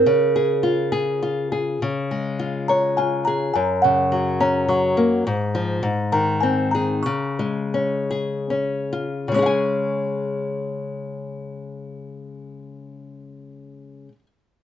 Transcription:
0.06 nylon-string guitar C#3, music box C#5
0.36 nylon-string guitar G#4
0.63 nylon-string guitar F4
0.92 nylon-string guitar G#4
1.23 nylon-string guitar F4
1.52 nylon-string guitar G#4
1.82 nylon-string guitar C#3
2.11 nylon-string guitar G#3
2.39 nylon-string guitar F4
2.68 nylon-string guitar C#5, music box A#5
2.97 nylon-string guitar F4, music box G#5
3.25 nylon-string guitar G#4, music box A#5
3.54 nylon-string guitar F#2, music box G#5
3.82 nylon-string guitar C#3, music box F#5
4.12 nylon-string guitar F#3
4.40 nylon-string guitar C#4, music box A#5
4.68 nylon-string guitar F#3, music box C#6
4.97 nylon-string guitar A#3
5.27 nylon-string guitar G#2
5.55 nylon-string guitar F3
5.83 nylon-string guitar G#2
6.12 nylon-string guitar D#3, music box A#5
6.41 nylon-string guitar C4, music box G#5
6.71 nylon-string guitar G#4, music box A#5
7.03 nylon-string guitar C#3, music box C#6
7.39 nylon-string guitar G#3
7.74 nylon-string guitar C#4
8.11 nylon-string guitar G#4
8.50 nylon-string guitar C#4
8.93 nylon-string guitar F4
9.28 nylon-string guitar C#3 G#3
9.34 nylon-string guitar C#4, music box C#6
9.39 nylon-string guitar G#4 F5
9.46 nylon-string guitar G#5

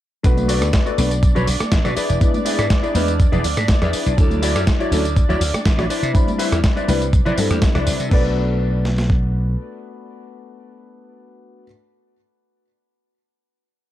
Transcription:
0.23 slap bass B1, grand piano A3 B3 D4 F#4 B4, analog synth pad D4 D5, kick, closed hi-hat, tambourine
0.37 closed hi-hat, tambourine, high conga
0.48 clean electric guitar F#4 A4 B4 D5, open hi-hat, tambourine
0.62 slap bass D2, cross-stick, closed hi-hat, tambourine
0.73 kick, snare, closed hi-hat, tambourine
0.86 clean electric guitar F#4 A4 B4 D5, closed hi-hat, tambourine
0.98 slap bass B1, grand piano A3 B3 D4 F#4 B4, open hi-hat, tambourine, high conga
1.11 closed hi-hat, tambourine
1.23 kick, closed hi-hat, tambourine
1.35 slap bass B1, clean electric guitar F#4 A4 B4 C#5, closed hi-hat, tambourine, low conga
1.47 slap bass B1, open hi-hat, tambourine
1.60 muted clean electric guitar stroke, cross-stick, closed hi-hat, tambourine, high conga
1.72 slap bass A1, kick, snare, closed hi-hat, tambourine
1.84 slap bass B2, clean electric guitar F#4 A4 B4 D5, cross-stick, closed hi-hat, tambourine, low conga
1.96 clean electric guitar E4 G#4 B4 D5, muted slap bass stroke, open hi-hat, tambourine
2.10 slap bass E1, closed hi-hat, tambourine
2.20 grand piano G#3 B3 D4 E4 B4, kick, closed hi-hat, tambourine
2.34 closed hi-hat, tambourine, high conga
2.45 clean electric guitar E4 G#4 B4 D5, open hi-hat, tambourine
2.59 slap bass G#2, cross-stick, closed hi-hat, tambourine
2.70 kick, snare, closed hi-hat, tambourine
2.83 clean electric guitar E4 G#4 B4 D5, closed hi-hat, tambourine
2.95 slap bass E2, grand piano G#3 B3 D4 E4 B4, open hi-hat, tambourine, high conga
3.08 closed hi-hat, tambourine
3.20 kick, closed hi-hat, tambourine
3.32 slap bass E1, clean electric guitar E4 G#4 B4 D5, closed hi-hat, tambourine, low conga
3.44 slap bass D2, open hi-hat, tambourine
3.57 slap bass G#2, muted clean electric guitar stroke, cross-stick, closed hi-hat, tambourine, high conga
3.68 kick, snare, closed hi-hat, tambourine
3.82 slap bass E2, clean electric guitar E4 G#4 B4 D5, cross-stick, closed hi-hat, tambourine, low conga
3.93 muted slap bass stroke, open hi-hat, tambourine
4.06 slap bass B1, closed hi-hat, tambourine
4.17 grand piano F#3 D4 E4 A4, kick, closed hi-hat, tambourine
4.30 closed hi-hat, tambourine, high conga
4.42 clean electric guitar E4 F#4 C#5 D5, open hi-hat, tambourine
4.56 slap bass F#2, cross-stick, closed hi-hat, tambourine
4.67 kick, snare, closed hi-hat, tambourine
4.80 clean electric guitar E4 F#4 C#5 D5, closed hi-hat, tambourine
4.91 slap bass D2, grand piano F#3 C#4 D4 E4 A4, open hi-hat, tambourine, high conga
5.05 closed hi-hat, tambourine
5.17 kick, closed hi-hat, tambourine
5.29 slap bass D2, clean electric guitar E4 F#4 C#5 D5, closed hi-hat, tambourine, low conga
5.41 slap bass D2, open hi-hat, tambourine
5.53 muted clean electric guitar stroke, muted slap bass stroke, cross-stick, closed hi-hat, tambourine, high conga
5.65 slap bass A1, kick, snare, closed hi-hat, tambourine
5.78 slap bass A1, clean electric guitar E4 F#4 C#5 D5, cross-stick, closed hi-hat, tambourine, low conga
5.89 clean electric guitar E4 B4 C5 D5, muted slap bass stroke, open hi-hat, tambourine
6.03 slap bass C3, closed hi-hat, tambourine
6.13 grand piano G3 C4 D4 E4 B5, kick, closed hi-hat, tambourine
6.28 closed hi-hat, tambourine, high conga
6.38 clean electric guitar E4 B4 C5 E5, open hi-hat, tambourine
6.52 slap bass E2, cross-stick, closed hi-hat, tambourine
6.64 kick, snare, closed hi-hat, tambourine
6.76 clean electric guitar E4 B4 C5 D5, closed hi-hat, tambourine
6.88 slap bass C2, grand piano G3 C4 D4 E4 B4, open hi-hat, tambourine, high conga
7.02 closed hi-hat, tambourine
7.13 kick, closed hi-hat, tambourine
7.25 slap bass C3, clean electric guitar E4 B4 C5 D5, closed hi-hat, tambourine, low conga
7.37 slap bass G2, grand piano G3 C4 D4 E4 A4, open hi-hat, tambourine
7.50 slap bass E2, cross-stick, closed hi-hat, tambourine, high conga
7.62 kick, snare, closed hi-hat, tambourine
7.75 slap bass C2, clean electric guitar E4 B4 C5 D5, cross-stick, closed hi-hat, tambourine, low conga
7.87 slap bass C2, open hi-hat, tambourine
8.00 slap bass C3, closed hi-hat, tambourine
8.09 slap bass B1, grand piano A3 B3 D4 F#4, clean electric guitar A4 B4, kick, crash
8.13 grand piano B4, clean electric guitar D5
8.85 snare
8.98 snare
9.10 kick

